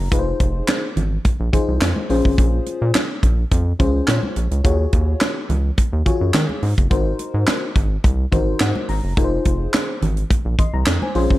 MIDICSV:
0, 0, Header, 1, 4, 480
1, 0, Start_track
1, 0, Tempo, 566038
1, 98, Time_signature, 4, 2, 24, 8
1, 9656, End_track
2, 0, Start_track
2, 0, Title_t, "FM electric piano"
2, 0, Program_c, 0, 5
2, 97, Note_on_c, 0, 63, 75
2, 98, Note_on_c, 0, 65, 75
2, 101, Note_on_c, 0, 68, 70
2, 104, Note_on_c, 0, 71, 73
2, 159, Note_on_c, 0, 72, 92
2, 160, Note_off_c, 0, 71, 0
2, 704, Note_off_c, 0, 63, 0
2, 704, Note_off_c, 0, 65, 0
2, 705, Note_off_c, 0, 68, 0
2, 734, Note_off_c, 0, 72, 0
2, 1295, Note_on_c, 0, 63, 85
2, 1297, Note_on_c, 0, 65, 75
2, 1300, Note_on_c, 0, 68, 75
2, 1301, Note_on_c, 0, 72, 90
2, 1748, Note_off_c, 0, 63, 0
2, 1749, Note_off_c, 0, 65, 0
2, 1750, Note_off_c, 0, 68, 0
2, 1751, Note_off_c, 0, 72, 0
2, 1778, Note_on_c, 0, 61, 91
2, 1781, Note_on_c, 0, 65, 79
2, 1783, Note_on_c, 0, 68, 87
2, 1785, Note_on_c, 0, 72, 99
2, 2549, Note_off_c, 0, 61, 0
2, 2551, Note_off_c, 0, 65, 0
2, 2552, Note_off_c, 0, 68, 0
2, 2553, Note_off_c, 0, 72, 0
2, 3216, Note_on_c, 0, 61, 78
2, 3218, Note_on_c, 0, 65, 78
2, 3220, Note_on_c, 0, 68, 75
2, 3224, Note_on_c, 0, 72, 94
2, 3460, Note_on_c, 0, 73, 64
2, 3668, Note_off_c, 0, 61, 0
2, 3669, Note_off_c, 0, 65, 0
2, 3670, Note_off_c, 0, 68, 0
2, 3672, Note_off_c, 0, 72, 0
2, 3906, Note_off_c, 0, 73, 0
2, 3935, Note_on_c, 0, 65, 75
2, 3937, Note_on_c, 0, 66, 73
2, 3941, Note_on_c, 0, 68, 76
2, 3942, Note_on_c, 0, 73, 88
2, 4542, Note_off_c, 0, 65, 0
2, 4543, Note_off_c, 0, 66, 0
2, 4545, Note_off_c, 0, 68, 0
2, 4546, Note_off_c, 0, 73, 0
2, 5136, Note_on_c, 0, 65, 87
2, 5138, Note_on_c, 0, 66, 76
2, 5140, Note_on_c, 0, 68, 76
2, 5142, Note_on_c, 0, 73, 86
2, 5588, Note_off_c, 0, 65, 0
2, 5589, Note_off_c, 0, 66, 0
2, 5590, Note_off_c, 0, 68, 0
2, 5591, Note_off_c, 0, 73, 0
2, 5855, Note_on_c, 0, 63, 74
2, 5857, Note_on_c, 0, 66, 71
2, 5859, Note_on_c, 0, 70, 72
2, 5861, Note_on_c, 0, 72, 91
2, 6462, Note_off_c, 0, 63, 0
2, 6464, Note_off_c, 0, 66, 0
2, 6465, Note_off_c, 0, 70, 0
2, 6466, Note_off_c, 0, 72, 0
2, 7053, Note_on_c, 0, 63, 77
2, 7056, Note_on_c, 0, 66, 73
2, 7059, Note_on_c, 0, 70, 72
2, 7060, Note_on_c, 0, 72, 93
2, 7296, Note_on_c, 0, 78, 74
2, 7507, Note_off_c, 0, 63, 0
2, 7508, Note_off_c, 0, 66, 0
2, 7510, Note_off_c, 0, 70, 0
2, 7510, Note_off_c, 0, 72, 0
2, 7521, Note_off_c, 0, 78, 0
2, 7539, Note_on_c, 0, 82, 72
2, 7762, Note_off_c, 0, 82, 0
2, 7777, Note_on_c, 0, 63, 78
2, 7779, Note_on_c, 0, 65, 75
2, 7780, Note_on_c, 0, 68, 74
2, 7782, Note_on_c, 0, 70, 69
2, 7838, Note_on_c, 0, 72, 90
2, 7839, Note_off_c, 0, 70, 0
2, 8383, Note_off_c, 0, 63, 0
2, 8384, Note_off_c, 0, 65, 0
2, 8385, Note_off_c, 0, 68, 0
2, 8414, Note_off_c, 0, 72, 0
2, 8979, Note_on_c, 0, 84, 67
2, 8984, Note_on_c, 0, 75, 56
2, 9100, Note_off_c, 0, 84, 0
2, 9102, Note_off_c, 0, 75, 0
2, 9104, Note_on_c, 0, 82, 72
2, 9333, Note_off_c, 0, 82, 0
2, 9347, Note_on_c, 0, 80, 63
2, 9352, Note_on_c, 0, 72, 58
2, 9452, Note_off_c, 0, 72, 0
2, 9456, Note_on_c, 0, 61, 90
2, 9457, Note_on_c, 0, 65, 81
2, 9460, Note_on_c, 0, 68, 84
2, 9462, Note_on_c, 0, 72, 96
2, 9574, Note_off_c, 0, 80, 0
2, 9656, Note_off_c, 0, 61, 0
2, 9656, Note_off_c, 0, 65, 0
2, 9656, Note_off_c, 0, 68, 0
2, 9656, Note_off_c, 0, 72, 0
2, 9656, End_track
3, 0, Start_track
3, 0, Title_t, "Analog synth bass"
3, 0, Program_c, 1, 38
3, 99, Note_on_c, 1, 29, 112
3, 281, Note_off_c, 1, 29, 0
3, 341, Note_on_c, 1, 29, 96
3, 521, Note_off_c, 1, 29, 0
3, 817, Note_on_c, 1, 32, 87
3, 999, Note_off_c, 1, 32, 0
3, 1186, Note_on_c, 1, 34, 90
3, 1271, Note_off_c, 1, 34, 0
3, 1426, Note_on_c, 1, 36, 77
3, 1511, Note_off_c, 1, 36, 0
3, 1539, Note_on_c, 1, 41, 99
3, 1635, Note_off_c, 1, 41, 0
3, 1779, Note_on_c, 1, 34, 91
3, 1875, Note_off_c, 1, 34, 0
3, 1909, Note_on_c, 1, 32, 88
3, 1993, Note_off_c, 1, 32, 0
3, 2021, Note_on_c, 1, 34, 121
3, 2201, Note_off_c, 1, 34, 0
3, 2388, Note_on_c, 1, 46, 104
3, 2473, Note_off_c, 1, 46, 0
3, 2739, Note_on_c, 1, 34, 87
3, 2920, Note_off_c, 1, 34, 0
3, 2982, Note_on_c, 1, 41, 107
3, 3162, Note_off_c, 1, 41, 0
3, 3220, Note_on_c, 1, 37, 90
3, 3401, Note_off_c, 1, 37, 0
3, 3459, Note_on_c, 1, 46, 106
3, 3555, Note_off_c, 1, 46, 0
3, 3700, Note_on_c, 1, 34, 82
3, 3796, Note_off_c, 1, 34, 0
3, 3827, Note_on_c, 1, 37, 84
3, 3912, Note_off_c, 1, 37, 0
3, 3941, Note_on_c, 1, 39, 108
3, 4121, Note_off_c, 1, 39, 0
3, 4181, Note_on_c, 1, 39, 103
3, 4361, Note_off_c, 1, 39, 0
3, 4659, Note_on_c, 1, 37, 87
3, 4840, Note_off_c, 1, 37, 0
3, 5026, Note_on_c, 1, 39, 85
3, 5111, Note_off_c, 1, 39, 0
3, 5265, Note_on_c, 1, 42, 80
3, 5351, Note_off_c, 1, 42, 0
3, 5378, Note_on_c, 1, 51, 102
3, 5474, Note_off_c, 1, 51, 0
3, 5619, Note_on_c, 1, 44, 88
3, 5715, Note_off_c, 1, 44, 0
3, 5749, Note_on_c, 1, 30, 79
3, 5833, Note_off_c, 1, 30, 0
3, 5860, Note_on_c, 1, 32, 117
3, 6041, Note_off_c, 1, 32, 0
3, 6225, Note_on_c, 1, 44, 93
3, 6311, Note_off_c, 1, 44, 0
3, 6579, Note_on_c, 1, 32, 90
3, 6760, Note_off_c, 1, 32, 0
3, 6821, Note_on_c, 1, 36, 104
3, 7001, Note_off_c, 1, 36, 0
3, 7059, Note_on_c, 1, 32, 90
3, 7240, Note_off_c, 1, 32, 0
3, 7298, Note_on_c, 1, 44, 100
3, 7394, Note_off_c, 1, 44, 0
3, 7538, Note_on_c, 1, 32, 93
3, 7634, Note_off_c, 1, 32, 0
3, 7663, Note_on_c, 1, 30, 85
3, 7750, Note_off_c, 1, 30, 0
3, 7779, Note_on_c, 1, 29, 108
3, 7960, Note_off_c, 1, 29, 0
3, 8018, Note_on_c, 1, 29, 96
3, 8200, Note_off_c, 1, 29, 0
3, 8496, Note_on_c, 1, 32, 95
3, 8679, Note_off_c, 1, 32, 0
3, 8864, Note_on_c, 1, 34, 90
3, 8950, Note_off_c, 1, 34, 0
3, 9104, Note_on_c, 1, 36, 88
3, 9190, Note_off_c, 1, 36, 0
3, 9216, Note_on_c, 1, 41, 96
3, 9313, Note_off_c, 1, 41, 0
3, 9457, Note_on_c, 1, 34, 104
3, 9554, Note_off_c, 1, 34, 0
3, 9586, Note_on_c, 1, 32, 84
3, 9656, Note_off_c, 1, 32, 0
3, 9656, End_track
4, 0, Start_track
4, 0, Title_t, "Drums"
4, 97, Note_on_c, 9, 62, 55
4, 99, Note_on_c, 9, 36, 113
4, 99, Note_on_c, 9, 42, 92
4, 182, Note_off_c, 9, 62, 0
4, 184, Note_off_c, 9, 36, 0
4, 184, Note_off_c, 9, 42, 0
4, 338, Note_on_c, 9, 42, 66
4, 341, Note_on_c, 9, 36, 86
4, 423, Note_off_c, 9, 42, 0
4, 425, Note_off_c, 9, 36, 0
4, 579, Note_on_c, 9, 39, 87
4, 580, Note_on_c, 9, 42, 91
4, 580, Note_on_c, 9, 63, 78
4, 582, Note_on_c, 9, 38, 105
4, 663, Note_off_c, 9, 39, 0
4, 665, Note_off_c, 9, 42, 0
4, 665, Note_off_c, 9, 63, 0
4, 667, Note_off_c, 9, 38, 0
4, 820, Note_on_c, 9, 42, 70
4, 822, Note_on_c, 9, 64, 74
4, 905, Note_off_c, 9, 42, 0
4, 907, Note_off_c, 9, 64, 0
4, 1058, Note_on_c, 9, 62, 58
4, 1061, Note_on_c, 9, 36, 99
4, 1061, Note_on_c, 9, 42, 82
4, 1143, Note_off_c, 9, 62, 0
4, 1145, Note_off_c, 9, 36, 0
4, 1146, Note_off_c, 9, 42, 0
4, 1300, Note_on_c, 9, 36, 94
4, 1300, Note_on_c, 9, 42, 84
4, 1301, Note_on_c, 9, 64, 78
4, 1385, Note_off_c, 9, 36, 0
4, 1385, Note_off_c, 9, 42, 0
4, 1386, Note_off_c, 9, 64, 0
4, 1538, Note_on_c, 9, 39, 92
4, 1541, Note_on_c, 9, 38, 107
4, 1542, Note_on_c, 9, 63, 72
4, 1543, Note_on_c, 9, 42, 97
4, 1622, Note_off_c, 9, 39, 0
4, 1626, Note_off_c, 9, 38, 0
4, 1626, Note_off_c, 9, 63, 0
4, 1628, Note_off_c, 9, 42, 0
4, 1664, Note_on_c, 9, 63, 77
4, 1749, Note_off_c, 9, 63, 0
4, 1778, Note_on_c, 9, 46, 76
4, 1863, Note_off_c, 9, 46, 0
4, 1909, Note_on_c, 9, 36, 76
4, 1994, Note_off_c, 9, 36, 0
4, 2020, Note_on_c, 9, 36, 118
4, 2020, Note_on_c, 9, 62, 53
4, 2021, Note_on_c, 9, 42, 95
4, 2105, Note_off_c, 9, 36, 0
4, 2105, Note_off_c, 9, 42, 0
4, 2105, Note_off_c, 9, 62, 0
4, 2258, Note_on_c, 9, 42, 65
4, 2261, Note_on_c, 9, 62, 32
4, 2343, Note_off_c, 9, 42, 0
4, 2345, Note_off_c, 9, 62, 0
4, 2500, Note_on_c, 9, 39, 85
4, 2501, Note_on_c, 9, 42, 90
4, 2502, Note_on_c, 9, 63, 80
4, 2503, Note_on_c, 9, 38, 112
4, 2585, Note_off_c, 9, 39, 0
4, 2586, Note_off_c, 9, 42, 0
4, 2587, Note_off_c, 9, 63, 0
4, 2588, Note_off_c, 9, 38, 0
4, 2739, Note_on_c, 9, 36, 92
4, 2740, Note_on_c, 9, 42, 70
4, 2824, Note_off_c, 9, 36, 0
4, 2825, Note_off_c, 9, 42, 0
4, 2980, Note_on_c, 9, 62, 59
4, 2981, Note_on_c, 9, 36, 100
4, 2981, Note_on_c, 9, 42, 91
4, 3065, Note_off_c, 9, 62, 0
4, 3066, Note_off_c, 9, 36, 0
4, 3066, Note_off_c, 9, 42, 0
4, 3220, Note_on_c, 9, 42, 76
4, 3221, Note_on_c, 9, 36, 96
4, 3221, Note_on_c, 9, 64, 76
4, 3305, Note_off_c, 9, 42, 0
4, 3306, Note_off_c, 9, 36, 0
4, 3306, Note_off_c, 9, 64, 0
4, 3457, Note_on_c, 9, 39, 83
4, 3460, Note_on_c, 9, 38, 105
4, 3462, Note_on_c, 9, 42, 92
4, 3464, Note_on_c, 9, 63, 70
4, 3542, Note_off_c, 9, 39, 0
4, 3545, Note_off_c, 9, 38, 0
4, 3547, Note_off_c, 9, 42, 0
4, 3548, Note_off_c, 9, 63, 0
4, 3587, Note_on_c, 9, 63, 78
4, 3672, Note_off_c, 9, 63, 0
4, 3698, Note_on_c, 9, 42, 79
4, 3783, Note_off_c, 9, 42, 0
4, 3827, Note_on_c, 9, 42, 53
4, 3912, Note_off_c, 9, 42, 0
4, 3939, Note_on_c, 9, 62, 54
4, 3940, Note_on_c, 9, 36, 113
4, 3940, Note_on_c, 9, 42, 92
4, 4024, Note_off_c, 9, 62, 0
4, 4025, Note_off_c, 9, 36, 0
4, 4025, Note_off_c, 9, 42, 0
4, 4177, Note_on_c, 9, 42, 67
4, 4181, Note_on_c, 9, 36, 87
4, 4262, Note_off_c, 9, 42, 0
4, 4266, Note_off_c, 9, 36, 0
4, 4417, Note_on_c, 9, 39, 85
4, 4419, Note_on_c, 9, 42, 87
4, 4421, Note_on_c, 9, 38, 105
4, 4422, Note_on_c, 9, 63, 81
4, 4502, Note_off_c, 9, 39, 0
4, 4504, Note_off_c, 9, 42, 0
4, 4506, Note_off_c, 9, 38, 0
4, 4507, Note_off_c, 9, 63, 0
4, 4660, Note_on_c, 9, 42, 69
4, 4662, Note_on_c, 9, 64, 69
4, 4745, Note_off_c, 9, 42, 0
4, 4747, Note_off_c, 9, 64, 0
4, 4899, Note_on_c, 9, 62, 62
4, 4901, Note_on_c, 9, 36, 98
4, 4902, Note_on_c, 9, 42, 86
4, 4984, Note_off_c, 9, 62, 0
4, 4986, Note_off_c, 9, 36, 0
4, 4986, Note_off_c, 9, 42, 0
4, 5140, Note_on_c, 9, 36, 90
4, 5140, Note_on_c, 9, 42, 78
4, 5142, Note_on_c, 9, 64, 71
4, 5225, Note_off_c, 9, 36, 0
4, 5225, Note_off_c, 9, 42, 0
4, 5226, Note_off_c, 9, 64, 0
4, 5377, Note_on_c, 9, 39, 89
4, 5380, Note_on_c, 9, 38, 113
4, 5382, Note_on_c, 9, 42, 102
4, 5382, Note_on_c, 9, 63, 72
4, 5462, Note_off_c, 9, 39, 0
4, 5465, Note_off_c, 9, 38, 0
4, 5467, Note_off_c, 9, 42, 0
4, 5467, Note_off_c, 9, 63, 0
4, 5505, Note_on_c, 9, 63, 72
4, 5590, Note_off_c, 9, 63, 0
4, 5618, Note_on_c, 9, 46, 75
4, 5703, Note_off_c, 9, 46, 0
4, 5748, Note_on_c, 9, 42, 56
4, 5749, Note_on_c, 9, 36, 83
4, 5833, Note_off_c, 9, 42, 0
4, 5834, Note_off_c, 9, 36, 0
4, 5858, Note_on_c, 9, 62, 54
4, 5859, Note_on_c, 9, 42, 87
4, 5860, Note_on_c, 9, 36, 114
4, 5943, Note_off_c, 9, 62, 0
4, 5944, Note_off_c, 9, 36, 0
4, 5944, Note_off_c, 9, 42, 0
4, 6097, Note_on_c, 9, 42, 70
4, 6101, Note_on_c, 9, 62, 32
4, 6182, Note_off_c, 9, 42, 0
4, 6186, Note_off_c, 9, 62, 0
4, 6338, Note_on_c, 9, 39, 86
4, 6339, Note_on_c, 9, 42, 84
4, 6340, Note_on_c, 9, 63, 77
4, 6342, Note_on_c, 9, 38, 107
4, 6423, Note_off_c, 9, 39, 0
4, 6424, Note_off_c, 9, 42, 0
4, 6425, Note_off_c, 9, 63, 0
4, 6426, Note_off_c, 9, 38, 0
4, 6578, Note_on_c, 9, 36, 96
4, 6579, Note_on_c, 9, 42, 72
4, 6663, Note_off_c, 9, 36, 0
4, 6664, Note_off_c, 9, 42, 0
4, 6818, Note_on_c, 9, 62, 56
4, 6820, Note_on_c, 9, 36, 105
4, 6822, Note_on_c, 9, 42, 84
4, 6903, Note_off_c, 9, 62, 0
4, 6905, Note_off_c, 9, 36, 0
4, 6907, Note_off_c, 9, 42, 0
4, 7059, Note_on_c, 9, 36, 99
4, 7059, Note_on_c, 9, 42, 81
4, 7060, Note_on_c, 9, 64, 73
4, 7144, Note_off_c, 9, 36, 0
4, 7144, Note_off_c, 9, 42, 0
4, 7145, Note_off_c, 9, 64, 0
4, 7294, Note_on_c, 9, 39, 88
4, 7297, Note_on_c, 9, 38, 106
4, 7299, Note_on_c, 9, 42, 98
4, 7301, Note_on_c, 9, 63, 72
4, 7379, Note_off_c, 9, 39, 0
4, 7382, Note_off_c, 9, 38, 0
4, 7384, Note_off_c, 9, 42, 0
4, 7386, Note_off_c, 9, 63, 0
4, 7424, Note_on_c, 9, 63, 74
4, 7509, Note_off_c, 9, 63, 0
4, 7535, Note_on_c, 9, 46, 74
4, 7620, Note_off_c, 9, 46, 0
4, 7777, Note_on_c, 9, 42, 93
4, 7778, Note_on_c, 9, 36, 117
4, 7778, Note_on_c, 9, 62, 56
4, 7862, Note_off_c, 9, 42, 0
4, 7863, Note_off_c, 9, 36, 0
4, 7863, Note_off_c, 9, 62, 0
4, 8015, Note_on_c, 9, 42, 68
4, 8019, Note_on_c, 9, 36, 83
4, 8020, Note_on_c, 9, 62, 32
4, 8100, Note_off_c, 9, 42, 0
4, 8104, Note_off_c, 9, 36, 0
4, 8105, Note_off_c, 9, 62, 0
4, 8257, Note_on_c, 9, 39, 93
4, 8259, Note_on_c, 9, 42, 91
4, 8261, Note_on_c, 9, 38, 106
4, 8262, Note_on_c, 9, 63, 79
4, 8342, Note_off_c, 9, 39, 0
4, 8343, Note_off_c, 9, 42, 0
4, 8346, Note_off_c, 9, 38, 0
4, 8346, Note_off_c, 9, 63, 0
4, 8499, Note_on_c, 9, 42, 73
4, 8502, Note_on_c, 9, 64, 78
4, 8584, Note_off_c, 9, 42, 0
4, 8586, Note_off_c, 9, 64, 0
4, 8622, Note_on_c, 9, 42, 51
4, 8707, Note_off_c, 9, 42, 0
4, 8737, Note_on_c, 9, 62, 58
4, 8738, Note_on_c, 9, 42, 83
4, 8739, Note_on_c, 9, 36, 101
4, 8822, Note_off_c, 9, 62, 0
4, 8823, Note_off_c, 9, 36, 0
4, 8823, Note_off_c, 9, 42, 0
4, 8976, Note_on_c, 9, 42, 82
4, 8978, Note_on_c, 9, 36, 92
4, 8980, Note_on_c, 9, 64, 70
4, 9061, Note_off_c, 9, 42, 0
4, 9062, Note_off_c, 9, 36, 0
4, 9065, Note_off_c, 9, 64, 0
4, 9212, Note_on_c, 9, 39, 89
4, 9215, Note_on_c, 9, 38, 119
4, 9217, Note_on_c, 9, 42, 95
4, 9222, Note_on_c, 9, 63, 67
4, 9296, Note_off_c, 9, 39, 0
4, 9300, Note_off_c, 9, 38, 0
4, 9301, Note_off_c, 9, 42, 0
4, 9306, Note_off_c, 9, 63, 0
4, 9345, Note_on_c, 9, 63, 71
4, 9430, Note_off_c, 9, 63, 0
4, 9454, Note_on_c, 9, 46, 77
4, 9539, Note_off_c, 9, 46, 0
4, 9586, Note_on_c, 9, 36, 84
4, 9656, Note_off_c, 9, 36, 0
4, 9656, End_track
0, 0, End_of_file